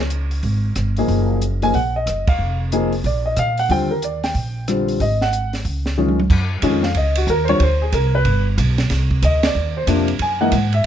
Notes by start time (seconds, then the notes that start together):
Already playing: C#2
0.10 closed hi-hat
0.31 open hi-hat
0.43 G#1, kick, open hi-hat
0.76 G1, cross-stick, closed hi-hat
0.97 F3 A#3 D#4 G#4, open hi-hat
1.08 F#1, kick, open hi-hat
1.42 closed hi-hat
1.62 F3 A#3 D#4 G#4 G#5, open hi-hat
1.74 A#1 F#5, kick, open hi-hat
1.96 D#5
2.06 F#1, cross-stick, closed hi-hat
2.27 F5, kick, ride
2.39 F1
2.72 F3 A#3 D#4 G#4, closed hi-hat
2.92 open hi-hat
3.04 A#1 D5, kick, open hi-hat
3.26 D#5
3.36 A#2 F5, cross-stick, closed hi-hat
3.57 F#5, open hi-hat
3.69 D#2 D3 G3 C4 F4 G5, kick, open hi-hat
3.91 A#4
4.02 D5, closed hi-hat
4.24 G5, snare, open hi-hat
4.34 A#1, kick, open hi-hat
4.68 D3 G3 C4 F4, cross-stick, closed hi-hat
4.88 open hi-hat
5.00 G#1 D#5, kick, open hi-hat
5.21 F#5, snare
5.33 closed hi-hat
5.53 snare, open hi-hat
5.65 C#2, kick, open hi-hat
5.86 snare
5.98 D#3 G#3 C#4 F4, mid tom
6.08 mid tom
6.20 mid tom
6.30 F#2, kick, crash
6.62 F2 D#3 G#3 C#4 F4, kick, hi-hat pedal, ride
6.83 F5, snare
6.94 C#2 D#5, kick, ride
7.15 F#4, ride
7.27 D#2 A#4, kick, hi-hat pedal
7.45 C5, ride
7.49 D3 G3 C4 F4 C#5
7.60 D2 C5, kick, ride
7.82 G#4
7.92 C2 A#4, kick, hi-hat pedal, ride
8.15 B4
8.25 G1, kick, ride
8.58 B1, kick, hi-hat pedal, ride
8.78 snare, ride
8.90 C2, kick, snare, ride
9.11 kick
9.22 D2 D#5, kick, hi-hat pedal, ride
9.43 D5, snare, ride
9.55 D#2
9.77 C5
9.87 F2 C3 F3 A#3 D4, kick, hi-hat pedal, ride
10.08 ride
10.19 F#2 G#5, kick, ride
10.41 E3 G#3 A#3 D#4 F#5
10.52 G#2, kick, hi-hat pedal, ride
10.73 E5, ride